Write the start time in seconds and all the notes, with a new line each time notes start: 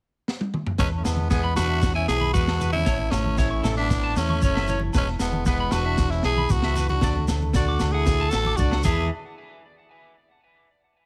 0.28 snare
0.41 high tom
0.54 mid tom
0.66 floor tom
0.78 E2 G#3 C#4 B4, kick, snare, low agogo, shekere
0.97 A3 C#4
1.04 E2 E3 G#3 B3, snare, low conga, low agogo, shekere
1.17 high conga
1.30 G#3 B3 G#4, kick, snare, shekere
1.44 B5
1.55 E2 B3 D4 F#4 B4, snare, low conga, low agogo, shekere
1.69 E5
1.82 B3, kick, snare, shekere
1.95 C#4 E4 G#5
2.08 B1 B3 E4 G#4, snare, low agogo, shekere
2.21 B5, high conga
2.33 E2 G#3 B3 F#4 B4, kick, shekere
2.48 snare, low agogo
2.60 E3 B4, low conga, shekere
2.73 C#4 E4, high conga
2.86 A1 A2 C#5, kick, snare, low agogo, shekere
3.10 A1 E3 A3 C#4, snare, low conga, low agogo, shekere
3.25 high conga
3.37 A3 C#4 E4 C#5, kick, snare, shekere
3.51 C#6
3.63 A1 A3 A4, snare, low conga, low agogo, shekere
3.77 B3 D4 E5
3.90 E4, kick, snare, shekere
4.04 A5
4.16 E2 A3 C#4 E4, snare, low agogo, shekere
4.29 C#6, high conga
4.42 F#1 A3 C#4 C#5, muted steel-string acoustic guitar stroke, kick, shekere
4.55 E5, snare, low agogo
4.68 E3 C#5, low conga, shekere
4.80 high conga
4.93 E1 E2 G#3 B4, kick, snare, low agogo, shekere
4.97 C#4
5.07 snare
5.19 E1 E3 G#3 B3, snare, low agogo, shekere
5.33 high conga
5.46 G#3 B3 B4, kick, snare, shekere
5.60 B5
5.71 E1 B3 D4 F#4 B4, snare, low conga, low agogo, shekere
5.85 E5
5.97 B3, kick, snare, shekere
6.10 C#4 E4, snare
6.23 B1 B3 E4 G#4, snare, low agogo
6.37 B5, high conga
6.49 C#2 G#3 B3 F#4, muted clean electric guitar stroke, kick, shekere
6.62 E5, snare, low agogo
6.75 E3 B4, low conga, shekere
6.89 D4 F#4, high conga
7.01 D2 D3 A3 D4 D5, kick, snare, low agogo, shekere
7.16 high conga
7.28 D2 A3, snare, high conga, low conga, low agogo, shekere
7.42 high conga
7.53 D4 F#4 D5, kick, snare, low conga, shekere
7.68 D6
7.79 D2, muted steel-string acoustic guitar stroke, snare, low conga, low agogo, shekere
7.92 E4 G#4 F#5
8.06 F#4, kick, snare, shekere
8.21 A5
8.30 A1 F#4 A4, snare, low agogo, shekere
8.45 D6, high conga
8.57 C#2 D4 F#4 D5, kick, shekere
8.71 F#5, snare, low agogo
8.83 E2 E3 G#3 E4 G#4 B4 E5 G#5, kick, crash, high conga, low agogo, shekere
8.88 B3 G#4